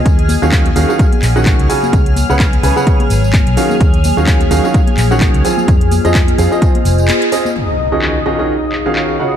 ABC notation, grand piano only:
X:1
M:4/4
L:1/16
Q:"Swing 16ths" 1/4=128
K:Ebm
V:1 name="Grand piano"
z3 [E,DGAf]2 z [E,DGAf] [E,DGAf] z3 [E,DGAg]3 [D,DGAa]2 | z3 [D,DAcg] z2 [D,DAca] [D,DAcg]2 z4 z [E,DGAf] z | z3 [E,DGAf]2 z [E,DGAf] [E,DGAf] z3 [E,DGAg]3 [F,=CFAa]2 | z3 [F,=CFAe] z2 [F,CFAf] [F,CFAe]2 z4 z [CFAe] z |
z3 [E,DFGAe]2 z [E,DFGAe] [E,DFGAe] z3 [E,DFGAf]3 [D,DFGAg]2 |]